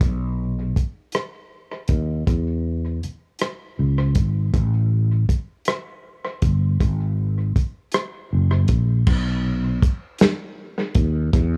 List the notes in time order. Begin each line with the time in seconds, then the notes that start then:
0.01 B1, kick, closed hi-hat
0.76 muted fretless electric bass stroke, kick, closed hi-hat
1.12 cross-stick, closed hi-hat
1.88 D#2, kick, closed hi-hat
2.27 E2, kick, closed hi-hat
3.03 muted fretless electric bass stroke, closed hi-hat
3.39 cross-stick, closed hi-hat
3.79 C#2
4.15 G#1, kick, closed hi-hat
4.54 A1, kick, closed hi-hat
5.29 kick, closed hi-hat
5.65 cross-stick, closed hi-hat
6.42 G1, kick, closed hi-hat
6.80 G#1, kick, closed hi-hat
7.56 muted fretless electric bass stroke, kick, closed hi-hat
7.92 cross-stick, closed hi-hat
8.33 F#1
8.68 A#1, kick, closed hi-hat
9.07 B1, kick, crash
9.82 muted fretless electric bass stroke, kick, closed hi-hat
10.19 snare, closed hi-hat
10.95 D#2, kick, closed hi-hat
11.33 E2, kick, closed hi-hat